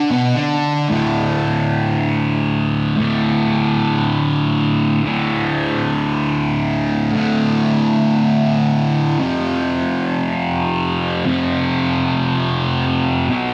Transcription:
0.10 B2 B3
0.35 D3 D4
0.89 D2 A2 D3
2.97 D2 A2 D3
5.03 D2 A2
5.07 D3
7.12 D2 A2 D3
9.19 F2 C3 F3
11.25 F2 C3 F3
13.29 B2 F#3
13.34 B3

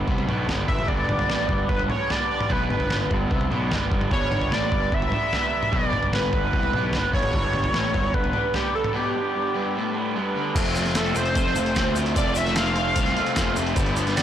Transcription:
Already playing: G3 B3 D4
0.07 C2 C3, kick
0.18 floor tom
0.27 B1 B2 G3 B3 D4, mid tom
0.46 G1 G2 G3 B3 D4, snare, floor tom
0.68 G1 G2 E5 B6, kick
0.79 mid tom
0.87 G1 G2 G3 B3 D4 D5 A6, kick, floor tom
1.08 G1 G2, mid tom
1.19 floor tom
1.28 A1 A2, snare
1.49 G1 G2, kick, floor tom
1.69 G1 G2 B4 F#6, kick
1.79 floor tom
1.88 G3 B3 D4 C#5 G#6, mid tom
2.09 G3 B3 D4 D5 A6, snare, floor tom
2.31 D5 A6
2.41 mid tom
2.49 B1 B2 G3 B3 D4 B4 F#6, kick, floor tom
2.70 G1 G2 B4 F#6, mid tom
2.80 floor tom
2.90 G1 G2, snare, mid tom
3.11 G1 G2, kick, floor tom
3.30 C2 C3, kick
3.41 floor tom
3.50 B1 B2 G3 B3 D4, mid tom
3.71 G1 G2 G3 B3 D4, snare, floor tom
3.91 G1 G2, kick
4.01 mid tom
4.11 G1 G2 G3 B3 D4 C#5 G#6, kick, floor tom
4.31 G1 G2, mid tom
4.41 floor tom
4.51 A1 A2 D5 A6, snare
4.72 G1 G2, kick, floor tom
4.92 G1 G2 E5 B6, kick
5.02 floor tom
5.12 G3 B3 D4, mid tom
5.32 G3 B3 D4, snare, floor tom
5.63 mid tom
5.72 B1 B2 G3 B3 D4 D5 A6, kick, floor tom
5.93 G1 G2, mid tom
6.03 floor tom
6.13 G1 G2 B4 F#6, snare, mid tom
6.33 G1 G2 B4 F#6, kick, floor tom
6.53 C2 C3, kick
6.63 floor tom
6.73 B1 B2 G3 B3 D4, mid tom
6.93 G1 G2 G3 B3 D4, snare, floor tom
7.13 G1 G2 C#5 G#6, kick
7.23 mid tom
7.33 G1 G2 G3 B3 D4, kick, floor tom
7.53 G1 G2, mid tom
7.64 floor tom
7.74 A1 A2, snare
7.94 G1 G2, kick, floor tom
8.14 G1 G2 B4 F#6, kick
8.24 floor tom
8.33 G3 B3 D4, mid tom
8.54 G3 B3 D4 G4 D6, snare, floor tom
8.75 A4 E6
8.84 mid tom
8.93 B2 G3 B3 D4 G4 D6
9.14 G2
9.35 G2
9.55 G2
9.75 A2
9.94 G3 B3 D4
10.15 G2 G3 B3 D4
10.36 D3
10.55 F1 F2 C3 F3 A3 C4 F4 C5 A5, kick, closed hi-hat, crash, shaker
10.65 closed hi-hat
10.75 F2 C3 F3 A3 C4 F4, closed hi-hat, shaker
10.85 snare, closed hi-hat, shaker
10.95 F2 C3 F3 A3 C4 F4 A4 E6, snare, closed hi-hat, shaker
11.06 closed hi-hat
11.15 F1 F2 C3 F3 A3 C4 F4 C5 G6, closed hi-hat, shaker
11.26 closed hi-hat
11.35 F1 F2 C3 F3 A3 C4 F4, kick, closed hi-hat, shaker
11.46 snare
11.56 F1 F2 C3 F3 A3 C4 F4, closed hi-hat, shaker
11.66 closed hi-hat
11.75 D2 F2 C3 F3 A3 C4 F4, kick, snare, closed hi-hat, shaker
11.96 F2 C3 F3 A3 C4 F4, closed hi-hat, shaker
12.06 closed hi-hat
12.15 F1 F2 C3 F3 A3 C4 F4 D5 A6, kick, closed hi-hat, shaker
12.35 F2 C3 F3 A3 C4 F4 E5 B6, closed hi-hat, shaker
12.45 snare, closed hi-hat, shaker
12.55 F2 C3 F3 A3 C4 F4 F5 C7, snare, closed hi-hat, shaker
12.66 closed hi-hat
12.75 F2 C3 F3 A3 C4 F4, closed hi-hat
12.94 C2 F2 C3 F3 A3 C4 F4, kick, closed hi-hat, shaker
13.06 snare, closed hi-hat
13.16 F2 C3 F3 A3 C4 F4, closed hi-hat
13.26 closed hi-hat
13.35 F1 F2 C3 F3 A3 C4 F4, kick, snare, closed hi-hat, shaker
13.55 F2 C3 F3 A3 C4 F4, closed hi-hat, shaker
13.67 closed hi-hat
13.76 G1 G2 D3 G3 B3 D4 G4 B4, kick, closed hi-hat, shaker
13.86 closed hi-hat
13.96 G2 D3 G3 B3 D4 G4, closed hi-hat, shaker
14.06 snare, closed hi-hat, shaker
14.16 G2 D3 G3 B3 D4 G4 D5 A6, snare, closed hi-hat, shaker

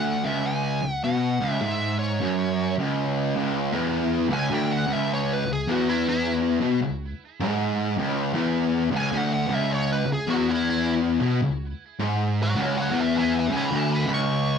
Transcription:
Already playing: D2 F#5
0.24 C#2 E5
0.46 G#5
0.82 C#2
0.93 F#5
1.04 B2 F#5
1.40 C#2
1.51 E5
1.62 G#2 E5
1.99 C#5
2.20 F#2
2.78 C#2
3.36 C#2
3.72 E2
4.30 C#2 G#5
4.51 D2 G5
4.72 F#5
4.87 C#2
4.93 E5
5.13 C#5
5.33 B4
5.46 C#2
5.53 G#4
5.67 E2
5.71 F#4
5.89 E4
6.09 E4
6.61 B2
6.82 C#2
7.40 G#2
7.98 C#2
8.33 E2
8.91 C#2
8.97 G#5
9.12 D2
9.17 F#5
9.33 F#5
9.47 C#2
9.54 E5
9.73 C#5
9.92 B4
10.05 C#2
10.13 G#4
10.27 E2 F#4
10.51 E4
10.70 E4
11.21 B2
11.42 C#2
11.99 G#2
12.42 C#5 F#5
12.56 C#2
12.62 C#5 F#5
12.80 C#5 F#5
12.91 E2
12.99 E5 G#5
13.19 E5 G#5
13.39 E5 G#5
13.49 C#2
13.57 G#5 B5
13.71 D2 G#5
13.76 B5
13.92 G#5 B5
14.07 C#2
14.14 C#6

